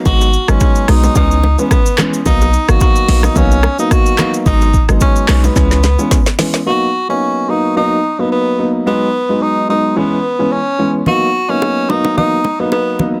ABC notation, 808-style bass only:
X:1
M:4/4
L:1/16
Q:"Swing 16ths" 1/4=109
K:B
V:1 name="808-style bass" clef=bass
G,,,3 G,,, z2 B,,,2 C,,4 z4 | B,,,3 G,,, z2 A,,,2 B,,,3 z4 z | G,,,3 G,,, z2 B,,,2 C,,4 z4 | z16 |
z16 | z16 |]